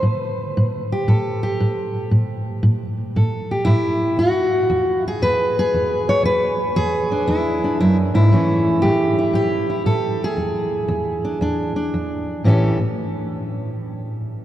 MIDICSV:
0, 0, Header, 1, 2, 480
1, 0, Start_track
1, 0, Tempo, 516796
1, 32, Time_signature, 4, 2, 24, 8
1, 13418, End_track
2, 0, Start_track
2, 0, Title_t, "Steel-string acoustic guitar"
2, 0, Program_c, 0, 25
2, 25, Note_on_c, 0, 45, 70
2, 478, Note_off_c, 0, 45, 0
2, 530, Note_on_c, 0, 45, 78
2, 858, Note_on_c, 0, 67, 61
2, 971, Note_off_c, 0, 45, 0
2, 1001, Note_on_c, 0, 45, 72
2, 1005, Note_on_c, 0, 69, 63
2, 1317, Note_off_c, 0, 67, 0
2, 1328, Note_on_c, 0, 67, 65
2, 1447, Note_off_c, 0, 45, 0
2, 1490, Note_on_c, 0, 45, 75
2, 1931, Note_off_c, 0, 45, 0
2, 1939, Note_off_c, 0, 67, 0
2, 1941, Note_off_c, 0, 69, 0
2, 1962, Note_on_c, 0, 45, 69
2, 2407, Note_off_c, 0, 45, 0
2, 2442, Note_on_c, 0, 45, 76
2, 2887, Note_off_c, 0, 45, 0
2, 2936, Note_on_c, 0, 69, 49
2, 2937, Note_on_c, 0, 45, 74
2, 3262, Note_on_c, 0, 67, 53
2, 3375, Note_off_c, 0, 45, 0
2, 3384, Note_off_c, 0, 69, 0
2, 3387, Note_on_c, 0, 64, 86
2, 3408, Note_on_c, 0, 45, 78
2, 3850, Note_off_c, 0, 45, 0
2, 3867, Note_off_c, 0, 67, 0
2, 3870, Note_off_c, 0, 64, 0
2, 3874, Note_on_c, 0, 40, 64
2, 3889, Note_on_c, 0, 66, 89
2, 4323, Note_off_c, 0, 40, 0
2, 4362, Note_on_c, 0, 40, 80
2, 4687, Note_off_c, 0, 66, 0
2, 4715, Note_on_c, 0, 68, 82
2, 4807, Note_off_c, 0, 40, 0
2, 4849, Note_on_c, 0, 40, 77
2, 4853, Note_on_c, 0, 71, 103
2, 5177, Note_off_c, 0, 68, 0
2, 5192, Note_on_c, 0, 68, 100
2, 5290, Note_off_c, 0, 40, 0
2, 5333, Note_on_c, 0, 40, 69
2, 5649, Note_off_c, 0, 71, 0
2, 5656, Note_on_c, 0, 73, 100
2, 5772, Note_off_c, 0, 40, 0
2, 5785, Note_on_c, 0, 40, 72
2, 5801, Note_off_c, 0, 73, 0
2, 5809, Note_on_c, 0, 71, 107
2, 6135, Note_off_c, 0, 68, 0
2, 6238, Note_off_c, 0, 40, 0
2, 6281, Note_on_c, 0, 68, 94
2, 6285, Note_on_c, 0, 40, 85
2, 6610, Note_on_c, 0, 62, 50
2, 6728, Note_off_c, 0, 40, 0
2, 6753, Note_off_c, 0, 71, 0
2, 6757, Note_on_c, 0, 64, 79
2, 6765, Note_on_c, 0, 40, 79
2, 7084, Note_off_c, 0, 62, 0
2, 7096, Note_on_c, 0, 62, 47
2, 7207, Note_off_c, 0, 40, 0
2, 7234, Note_off_c, 0, 64, 0
2, 7236, Note_off_c, 0, 68, 0
2, 7249, Note_on_c, 0, 64, 90
2, 7257, Note_on_c, 0, 42, 66
2, 7397, Note_off_c, 0, 64, 0
2, 7559, Note_off_c, 0, 42, 0
2, 7562, Note_on_c, 0, 44, 67
2, 7569, Note_on_c, 0, 64, 90
2, 7702, Note_off_c, 0, 62, 0
2, 7714, Note_off_c, 0, 44, 0
2, 7724, Note_on_c, 0, 45, 66
2, 7730, Note_on_c, 0, 52, 42
2, 7735, Note_on_c, 0, 57, 49
2, 7745, Note_on_c, 0, 61, 44
2, 8167, Note_off_c, 0, 45, 0
2, 8187, Note_off_c, 0, 61, 0
2, 8191, Note_on_c, 0, 67, 87
2, 8210, Note_on_c, 0, 45, 74
2, 8521, Note_off_c, 0, 64, 0
2, 8532, Note_on_c, 0, 64, 51
2, 8650, Note_off_c, 0, 45, 0
2, 8670, Note_on_c, 0, 45, 72
2, 8671, Note_off_c, 0, 67, 0
2, 8686, Note_on_c, 0, 67, 91
2, 9002, Note_off_c, 0, 64, 0
2, 9006, Note_on_c, 0, 64, 48
2, 9120, Note_off_c, 0, 45, 0
2, 9155, Note_off_c, 0, 64, 0
2, 9155, Note_on_c, 0, 45, 74
2, 9159, Note_on_c, 0, 69, 96
2, 9485, Note_off_c, 0, 67, 0
2, 9511, Note_on_c, 0, 68, 82
2, 9603, Note_off_c, 0, 45, 0
2, 9628, Note_on_c, 0, 40, 72
2, 9635, Note_off_c, 0, 69, 0
2, 9643, Note_off_c, 0, 57, 0
2, 10079, Note_off_c, 0, 40, 0
2, 10109, Note_on_c, 0, 40, 82
2, 10445, Note_on_c, 0, 62, 46
2, 10560, Note_off_c, 0, 40, 0
2, 10596, Note_off_c, 0, 62, 0
2, 10596, Note_on_c, 0, 40, 77
2, 10607, Note_on_c, 0, 62, 53
2, 10912, Note_off_c, 0, 62, 0
2, 10923, Note_on_c, 0, 62, 50
2, 11044, Note_off_c, 0, 40, 0
2, 11088, Note_on_c, 0, 40, 68
2, 11530, Note_off_c, 0, 40, 0
2, 11537, Note_off_c, 0, 62, 0
2, 11554, Note_off_c, 0, 52, 0
2, 11557, Note_on_c, 0, 45, 60
2, 11565, Note_on_c, 0, 52, 53
2, 11569, Note_off_c, 0, 68, 0
2, 11574, Note_on_c, 0, 61, 59
2, 11584, Note_on_c, 0, 67, 50
2, 11593, Note_on_c, 0, 69, 80
2, 11849, Note_off_c, 0, 45, 0
2, 11853, Note_off_c, 0, 52, 0
2, 11857, Note_off_c, 0, 61, 0
2, 11863, Note_off_c, 0, 67, 0
2, 11878, Note_off_c, 0, 69, 0
2, 13418, End_track
0, 0, End_of_file